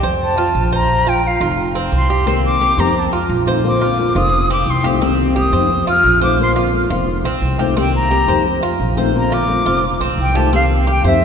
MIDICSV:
0, 0, Header, 1, 6, 480
1, 0, Start_track
1, 0, Tempo, 344037
1, 1253, Time_signature, 4, 2, 24, 8
1, 15692, End_track
2, 0, Start_track
2, 0, Title_t, "Flute"
2, 0, Program_c, 0, 73
2, 337, Note_on_c, 0, 81, 81
2, 986, Note_off_c, 0, 81, 0
2, 1026, Note_on_c, 0, 82, 109
2, 1515, Note_on_c, 0, 79, 92
2, 1536, Note_off_c, 0, 82, 0
2, 1775, Note_on_c, 0, 77, 82
2, 1796, Note_off_c, 0, 79, 0
2, 1993, Note_off_c, 0, 77, 0
2, 2727, Note_on_c, 0, 84, 88
2, 3378, Note_off_c, 0, 84, 0
2, 3424, Note_on_c, 0, 86, 111
2, 3906, Note_on_c, 0, 82, 104
2, 3927, Note_off_c, 0, 86, 0
2, 4175, Note_on_c, 0, 81, 86
2, 4196, Note_off_c, 0, 82, 0
2, 4391, Note_off_c, 0, 81, 0
2, 5133, Note_on_c, 0, 86, 97
2, 5824, Note_on_c, 0, 87, 119
2, 5845, Note_off_c, 0, 86, 0
2, 6293, Note_off_c, 0, 87, 0
2, 6313, Note_on_c, 0, 86, 91
2, 6561, Note_on_c, 0, 84, 84
2, 6582, Note_off_c, 0, 86, 0
2, 6781, Note_off_c, 0, 84, 0
2, 7520, Note_on_c, 0, 87, 94
2, 8171, Note_off_c, 0, 87, 0
2, 8221, Note_on_c, 0, 89, 114
2, 8657, Note_off_c, 0, 89, 0
2, 8697, Note_on_c, 0, 86, 90
2, 8912, Note_off_c, 0, 86, 0
2, 8968, Note_on_c, 0, 84, 91
2, 9097, Note_off_c, 0, 84, 0
2, 10878, Note_on_c, 0, 79, 85
2, 11084, Note_off_c, 0, 79, 0
2, 11095, Note_on_c, 0, 82, 107
2, 11759, Note_off_c, 0, 82, 0
2, 12812, Note_on_c, 0, 82, 94
2, 13026, Note_on_c, 0, 86, 112
2, 13047, Note_off_c, 0, 82, 0
2, 13737, Note_off_c, 0, 86, 0
2, 14251, Note_on_c, 0, 79, 92
2, 14461, Note_on_c, 0, 81, 101
2, 14481, Note_off_c, 0, 79, 0
2, 14695, Note_off_c, 0, 81, 0
2, 14724, Note_on_c, 0, 77, 98
2, 14858, Note_off_c, 0, 77, 0
2, 15215, Note_on_c, 0, 79, 88
2, 15418, Note_off_c, 0, 79, 0
2, 15436, Note_on_c, 0, 76, 98
2, 15692, Note_off_c, 0, 76, 0
2, 15692, End_track
3, 0, Start_track
3, 0, Title_t, "Cuban tres"
3, 0, Program_c, 1, 25
3, 47, Note_on_c, 1, 72, 75
3, 516, Note_off_c, 1, 72, 0
3, 525, Note_on_c, 1, 65, 76
3, 994, Note_off_c, 1, 65, 0
3, 1011, Note_on_c, 1, 72, 80
3, 1477, Note_off_c, 1, 72, 0
3, 1489, Note_on_c, 1, 65, 72
3, 1948, Note_off_c, 1, 65, 0
3, 1965, Note_on_c, 1, 65, 74
3, 2433, Note_off_c, 1, 65, 0
3, 2446, Note_on_c, 1, 60, 84
3, 2913, Note_off_c, 1, 60, 0
3, 2928, Note_on_c, 1, 67, 79
3, 3160, Note_off_c, 1, 67, 0
3, 3166, Note_on_c, 1, 60, 85
3, 3632, Note_off_c, 1, 60, 0
3, 3646, Note_on_c, 1, 67, 66
3, 3879, Note_off_c, 1, 67, 0
3, 3885, Note_on_c, 1, 72, 71
3, 4351, Note_off_c, 1, 72, 0
3, 4363, Note_on_c, 1, 65, 80
3, 4830, Note_off_c, 1, 65, 0
3, 4846, Note_on_c, 1, 72, 79
3, 5311, Note_off_c, 1, 72, 0
3, 5322, Note_on_c, 1, 65, 75
3, 5788, Note_off_c, 1, 65, 0
3, 5803, Note_on_c, 1, 65, 71
3, 6268, Note_off_c, 1, 65, 0
3, 6285, Note_on_c, 1, 60, 89
3, 6748, Note_off_c, 1, 60, 0
3, 6754, Note_on_c, 1, 67, 79
3, 6990, Note_off_c, 1, 67, 0
3, 6998, Note_on_c, 1, 60, 83
3, 7465, Note_off_c, 1, 60, 0
3, 7474, Note_on_c, 1, 67, 71
3, 7710, Note_off_c, 1, 67, 0
3, 7713, Note_on_c, 1, 72, 74
3, 8182, Note_off_c, 1, 72, 0
3, 8192, Note_on_c, 1, 65, 80
3, 8661, Note_off_c, 1, 65, 0
3, 8671, Note_on_c, 1, 72, 82
3, 9141, Note_off_c, 1, 72, 0
3, 9152, Note_on_c, 1, 65, 71
3, 9615, Note_off_c, 1, 65, 0
3, 9632, Note_on_c, 1, 65, 73
3, 10101, Note_off_c, 1, 65, 0
3, 10117, Note_on_c, 1, 60, 91
3, 10584, Note_off_c, 1, 60, 0
3, 10593, Note_on_c, 1, 67, 75
3, 10829, Note_off_c, 1, 67, 0
3, 10836, Note_on_c, 1, 60, 83
3, 11304, Note_off_c, 1, 60, 0
3, 11315, Note_on_c, 1, 67, 70
3, 11550, Note_off_c, 1, 67, 0
3, 11555, Note_on_c, 1, 72, 74
3, 12024, Note_off_c, 1, 72, 0
3, 12037, Note_on_c, 1, 65, 78
3, 12505, Note_off_c, 1, 65, 0
3, 12521, Note_on_c, 1, 72, 77
3, 12988, Note_off_c, 1, 72, 0
3, 13003, Note_on_c, 1, 65, 76
3, 13462, Note_off_c, 1, 65, 0
3, 13479, Note_on_c, 1, 65, 76
3, 13949, Note_off_c, 1, 65, 0
3, 13964, Note_on_c, 1, 60, 83
3, 14432, Note_off_c, 1, 60, 0
3, 14443, Note_on_c, 1, 67, 80
3, 14679, Note_off_c, 1, 67, 0
3, 14690, Note_on_c, 1, 60, 79
3, 15157, Note_off_c, 1, 60, 0
3, 15168, Note_on_c, 1, 67, 72
3, 15403, Note_off_c, 1, 67, 0
3, 15409, Note_on_c, 1, 72, 73
3, 15692, Note_off_c, 1, 72, 0
3, 15692, End_track
4, 0, Start_track
4, 0, Title_t, "Steel-string acoustic guitar"
4, 0, Program_c, 2, 25
4, 3154, Note_on_c, 2, 48, 74
4, 3161, Note_on_c, 2, 51, 77
4, 3167, Note_on_c, 2, 58, 85
4, 3174, Note_on_c, 2, 60, 85
4, 3178, Note_on_c, 2, 67, 81
4, 3618, Note_off_c, 2, 51, 0
4, 3628, Note_off_c, 2, 58, 0
4, 3632, Note_off_c, 2, 48, 0
4, 3634, Note_on_c, 2, 51, 54
4, 3636, Note_off_c, 2, 60, 0
4, 3643, Note_off_c, 2, 67, 0
4, 3644, Note_on_c, 2, 58, 58
4, 3653, Note_on_c, 2, 60, 53
4, 3659, Note_on_c, 2, 67, 60
4, 3859, Note_off_c, 2, 67, 0
4, 3867, Note_off_c, 2, 60, 0
4, 3872, Note_off_c, 2, 51, 0
4, 3875, Note_on_c, 2, 67, 64
4, 3876, Note_off_c, 2, 58, 0
4, 3884, Note_on_c, 2, 60, 65
4, 3892, Note_on_c, 2, 58, 64
4, 3899, Note_on_c, 2, 51, 56
4, 4101, Note_off_c, 2, 51, 0
4, 4112, Note_off_c, 2, 60, 0
4, 4112, Note_off_c, 2, 67, 0
4, 4117, Note_off_c, 2, 58, 0
4, 4834, Note_on_c, 2, 65, 66
4, 4845, Note_on_c, 2, 60, 65
4, 4851, Note_on_c, 2, 57, 57
4, 4858, Note_on_c, 2, 51, 55
4, 5062, Note_off_c, 2, 51, 0
4, 5068, Note_on_c, 2, 50, 70
4, 5070, Note_off_c, 2, 65, 0
4, 5071, Note_off_c, 2, 60, 0
4, 5076, Note_off_c, 2, 57, 0
4, 5081, Note_on_c, 2, 58, 74
4, 5087, Note_on_c, 2, 60, 87
4, 5095, Note_on_c, 2, 65, 93
4, 5533, Note_off_c, 2, 50, 0
4, 5546, Note_off_c, 2, 58, 0
4, 5550, Note_on_c, 2, 50, 53
4, 5552, Note_off_c, 2, 60, 0
4, 5560, Note_off_c, 2, 65, 0
4, 5563, Note_on_c, 2, 58, 62
4, 5569, Note_on_c, 2, 60, 58
4, 5577, Note_on_c, 2, 65, 62
4, 5772, Note_off_c, 2, 65, 0
4, 5787, Note_off_c, 2, 50, 0
4, 5788, Note_off_c, 2, 60, 0
4, 5788, Note_on_c, 2, 65, 68
4, 5794, Note_off_c, 2, 58, 0
4, 5804, Note_on_c, 2, 60, 69
4, 5815, Note_on_c, 2, 58, 57
4, 6026, Note_off_c, 2, 60, 0
4, 6026, Note_off_c, 2, 65, 0
4, 6032, Note_off_c, 2, 58, 0
4, 6753, Note_on_c, 2, 65, 65
4, 6763, Note_on_c, 2, 60, 70
4, 6769, Note_on_c, 2, 57, 66
4, 6776, Note_on_c, 2, 51, 55
4, 6981, Note_off_c, 2, 51, 0
4, 6987, Note_off_c, 2, 65, 0
4, 6990, Note_on_c, 2, 48, 76
4, 6992, Note_off_c, 2, 60, 0
4, 6996, Note_off_c, 2, 57, 0
4, 6998, Note_on_c, 2, 51, 72
4, 7005, Note_on_c, 2, 58, 76
4, 7011, Note_on_c, 2, 60, 85
4, 7013, Note_on_c, 2, 67, 81
4, 7455, Note_off_c, 2, 51, 0
4, 7462, Note_off_c, 2, 58, 0
4, 7465, Note_off_c, 2, 48, 0
4, 7472, Note_on_c, 2, 51, 58
4, 7476, Note_off_c, 2, 60, 0
4, 7477, Note_off_c, 2, 67, 0
4, 7479, Note_on_c, 2, 58, 61
4, 7490, Note_on_c, 2, 60, 58
4, 7497, Note_on_c, 2, 67, 58
4, 7693, Note_off_c, 2, 67, 0
4, 7703, Note_off_c, 2, 60, 0
4, 7707, Note_off_c, 2, 51, 0
4, 7709, Note_on_c, 2, 67, 67
4, 7710, Note_off_c, 2, 58, 0
4, 7719, Note_on_c, 2, 60, 64
4, 7728, Note_on_c, 2, 58, 60
4, 7736, Note_on_c, 2, 51, 52
4, 7935, Note_off_c, 2, 51, 0
4, 7938, Note_off_c, 2, 60, 0
4, 7945, Note_off_c, 2, 67, 0
4, 7951, Note_off_c, 2, 58, 0
4, 8666, Note_on_c, 2, 65, 66
4, 8674, Note_on_c, 2, 60, 66
4, 8684, Note_on_c, 2, 57, 62
4, 8691, Note_on_c, 2, 51, 52
4, 8901, Note_off_c, 2, 51, 0
4, 8903, Note_off_c, 2, 65, 0
4, 8907, Note_off_c, 2, 60, 0
4, 8907, Note_on_c, 2, 50, 73
4, 8912, Note_off_c, 2, 57, 0
4, 8919, Note_on_c, 2, 58, 82
4, 8923, Note_on_c, 2, 60, 79
4, 8932, Note_on_c, 2, 65, 85
4, 9373, Note_off_c, 2, 50, 0
4, 9385, Note_off_c, 2, 58, 0
4, 9389, Note_on_c, 2, 50, 53
4, 9392, Note_off_c, 2, 60, 0
4, 9396, Note_off_c, 2, 65, 0
4, 9401, Note_on_c, 2, 58, 57
4, 9410, Note_on_c, 2, 60, 62
4, 9415, Note_on_c, 2, 65, 60
4, 9612, Note_off_c, 2, 65, 0
4, 9623, Note_off_c, 2, 60, 0
4, 9625, Note_off_c, 2, 50, 0
4, 9629, Note_on_c, 2, 65, 70
4, 9631, Note_off_c, 2, 58, 0
4, 9640, Note_on_c, 2, 60, 60
4, 9653, Note_on_c, 2, 58, 50
4, 9864, Note_off_c, 2, 60, 0
4, 9864, Note_off_c, 2, 65, 0
4, 9874, Note_off_c, 2, 58, 0
4, 10593, Note_on_c, 2, 65, 71
4, 10600, Note_on_c, 2, 60, 70
4, 10611, Note_on_c, 2, 57, 62
4, 10619, Note_on_c, 2, 51, 54
4, 10817, Note_off_c, 2, 51, 0
4, 10827, Note_off_c, 2, 65, 0
4, 10827, Note_on_c, 2, 48, 81
4, 10831, Note_off_c, 2, 60, 0
4, 10833, Note_on_c, 2, 51, 77
4, 10834, Note_off_c, 2, 57, 0
4, 10840, Note_on_c, 2, 58, 77
4, 10847, Note_on_c, 2, 60, 92
4, 10851, Note_on_c, 2, 67, 78
4, 11287, Note_off_c, 2, 51, 0
4, 11299, Note_off_c, 2, 58, 0
4, 11303, Note_on_c, 2, 51, 54
4, 11304, Note_off_c, 2, 48, 0
4, 11305, Note_off_c, 2, 60, 0
4, 11312, Note_off_c, 2, 67, 0
4, 11316, Note_on_c, 2, 58, 53
4, 11322, Note_on_c, 2, 60, 61
4, 11329, Note_on_c, 2, 67, 56
4, 11529, Note_off_c, 2, 67, 0
4, 11543, Note_off_c, 2, 51, 0
4, 11543, Note_off_c, 2, 60, 0
4, 11546, Note_on_c, 2, 67, 71
4, 11549, Note_off_c, 2, 58, 0
4, 11560, Note_on_c, 2, 60, 63
4, 11565, Note_on_c, 2, 58, 60
4, 11571, Note_on_c, 2, 51, 56
4, 11780, Note_off_c, 2, 51, 0
4, 11783, Note_off_c, 2, 60, 0
4, 11784, Note_off_c, 2, 67, 0
4, 11792, Note_off_c, 2, 58, 0
4, 12513, Note_on_c, 2, 65, 70
4, 12525, Note_on_c, 2, 60, 70
4, 12528, Note_on_c, 2, 57, 64
4, 12537, Note_on_c, 2, 51, 61
4, 12747, Note_off_c, 2, 51, 0
4, 12749, Note_off_c, 2, 65, 0
4, 12753, Note_on_c, 2, 50, 78
4, 12754, Note_off_c, 2, 60, 0
4, 12755, Note_off_c, 2, 57, 0
4, 12761, Note_on_c, 2, 58, 87
4, 12771, Note_on_c, 2, 60, 77
4, 12777, Note_on_c, 2, 65, 88
4, 13214, Note_off_c, 2, 50, 0
4, 13227, Note_off_c, 2, 58, 0
4, 13231, Note_on_c, 2, 50, 52
4, 13235, Note_off_c, 2, 60, 0
4, 13241, Note_off_c, 2, 65, 0
4, 13243, Note_on_c, 2, 58, 59
4, 13252, Note_on_c, 2, 60, 58
4, 13257, Note_on_c, 2, 65, 64
4, 13458, Note_off_c, 2, 65, 0
4, 13468, Note_off_c, 2, 50, 0
4, 13471, Note_off_c, 2, 60, 0
4, 13475, Note_off_c, 2, 58, 0
4, 13475, Note_on_c, 2, 65, 70
4, 13488, Note_on_c, 2, 60, 64
4, 13497, Note_on_c, 2, 58, 54
4, 13710, Note_off_c, 2, 60, 0
4, 13711, Note_off_c, 2, 65, 0
4, 13720, Note_off_c, 2, 58, 0
4, 14439, Note_on_c, 2, 65, 71
4, 14449, Note_on_c, 2, 60, 60
4, 14457, Note_on_c, 2, 57, 62
4, 14463, Note_on_c, 2, 51, 58
4, 14669, Note_off_c, 2, 51, 0
4, 14675, Note_off_c, 2, 65, 0
4, 14679, Note_off_c, 2, 60, 0
4, 14679, Note_on_c, 2, 48, 74
4, 14683, Note_off_c, 2, 57, 0
4, 14686, Note_on_c, 2, 51, 77
4, 14691, Note_on_c, 2, 58, 80
4, 14699, Note_on_c, 2, 60, 83
4, 14704, Note_on_c, 2, 67, 80
4, 15143, Note_off_c, 2, 51, 0
4, 15154, Note_off_c, 2, 58, 0
4, 15156, Note_off_c, 2, 48, 0
4, 15160, Note_off_c, 2, 60, 0
4, 15160, Note_on_c, 2, 51, 56
4, 15168, Note_off_c, 2, 67, 0
4, 15170, Note_on_c, 2, 58, 57
4, 15177, Note_on_c, 2, 60, 59
4, 15187, Note_on_c, 2, 67, 57
4, 15389, Note_off_c, 2, 67, 0
4, 15396, Note_off_c, 2, 51, 0
4, 15400, Note_off_c, 2, 60, 0
4, 15401, Note_off_c, 2, 58, 0
4, 15406, Note_on_c, 2, 67, 68
4, 15417, Note_on_c, 2, 60, 64
4, 15422, Note_on_c, 2, 58, 63
4, 15433, Note_on_c, 2, 51, 57
4, 15635, Note_off_c, 2, 51, 0
4, 15637, Note_off_c, 2, 60, 0
4, 15639, Note_off_c, 2, 67, 0
4, 15646, Note_off_c, 2, 58, 0
4, 15692, End_track
5, 0, Start_track
5, 0, Title_t, "Upright bass"
5, 0, Program_c, 3, 32
5, 44, Note_on_c, 3, 41, 97
5, 718, Note_off_c, 3, 41, 0
5, 763, Note_on_c, 3, 34, 92
5, 1887, Note_off_c, 3, 34, 0
5, 1959, Note_on_c, 3, 29, 101
5, 2634, Note_off_c, 3, 29, 0
5, 2677, Note_on_c, 3, 36, 95
5, 3802, Note_off_c, 3, 36, 0
5, 3873, Note_on_c, 3, 41, 90
5, 4548, Note_off_c, 3, 41, 0
5, 4596, Note_on_c, 3, 34, 99
5, 5719, Note_off_c, 3, 34, 0
5, 5792, Note_on_c, 3, 29, 97
5, 6466, Note_off_c, 3, 29, 0
5, 6507, Note_on_c, 3, 36, 91
5, 7633, Note_off_c, 3, 36, 0
5, 7705, Note_on_c, 3, 41, 94
5, 8381, Note_off_c, 3, 41, 0
5, 8427, Note_on_c, 3, 34, 95
5, 9553, Note_off_c, 3, 34, 0
5, 9625, Note_on_c, 3, 29, 91
5, 10078, Note_off_c, 3, 29, 0
5, 10105, Note_on_c, 3, 34, 78
5, 10335, Note_off_c, 3, 34, 0
5, 10351, Note_on_c, 3, 36, 93
5, 11477, Note_off_c, 3, 36, 0
5, 11552, Note_on_c, 3, 41, 92
5, 12227, Note_off_c, 3, 41, 0
5, 12274, Note_on_c, 3, 34, 98
5, 13401, Note_off_c, 3, 34, 0
5, 13473, Note_on_c, 3, 29, 94
5, 13926, Note_off_c, 3, 29, 0
5, 13959, Note_on_c, 3, 34, 77
5, 14186, Note_off_c, 3, 34, 0
5, 14199, Note_on_c, 3, 36, 88
5, 15327, Note_off_c, 3, 36, 0
5, 15402, Note_on_c, 3, 41, 99
5, 15692, Note_off_c, 3, 41, 0
5, 15692, End_track
6, 0, Start_track
6, 0, Title_t, "Muted steel-string acoustic guitar strokes"
6, 4113, Note_on_c, 9, 29, 55
6, 4253, Note_off_c, 9, 29, 0
6, 6032, Note_on_c, 9, 29, 63
6, 6171, Note_off_c, 9, 29, 0
6, 7947, Note_on_c, 9, 29, 63
6, 8087, Note_off_c, 9, 29, 0
6, 9867, Note_on_c, 9, 29, 63
6, 10007, Note_off_c, 9, 29, 0
6, 11793, Note_on_c, 9, 29, 68
6, 11933, Note_off_c, 9, 29, 0
6, 13718, Note_on_c, 9, 29, 55
6, 13857, Note_off_c, 9, 29, 0
6, 15649, Note_on_c, 9, 29, 66
6, 15692, Note_off_c, 9, 29, 0
6, 15692, End_track
0, 0, End_of_file